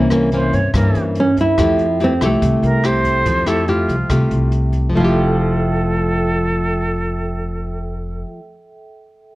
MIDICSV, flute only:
0, 0, Header, 1, 2, 480
1, 0, Start_track
1, 0, Key_signature, -1, "major"
1, 0, Tempo, 419580
1, 1805, Time_signature, 4, 2, 24, 8
1, 10698, End_track
2, 0, Start_track
2, 0, Title_t, "Flute"
2, 0, Program_c, 0, 73
2, 379, Note_on_c, 0, 72, 91
2, 623, Note_on_c, 0, 73, 98
2, 640, Note_off_c, 0, 72, 0
2, 854, Note_off_c, 0, 73, 0
2, 861, Note_on_c, 0, 70, 77
2, 1189, Note_off_c, 0, 70, 0
2, 3009, Note_on_c, 0, 70, 99
2, 3267, Note_on_c, 0, 72, 106
2, 3284, Note_off_c, 0, 70, 0
2, 3977, Note_on_c, 0, 69, 88
2, 3994, Note_off_c, 0, 72, 0
2, 4224, Note_on_c, 0, 65, 82
2, 4241, Note_off_c, 0, 69, 0
2, 5175, Note_off_c, 0, 65, 0
2, 5655, Note_on_c, 0, 69, 89
2, 9422, Note_off_c, 0, 69, 0
2, 10698, End_track
0, 0, End_of_file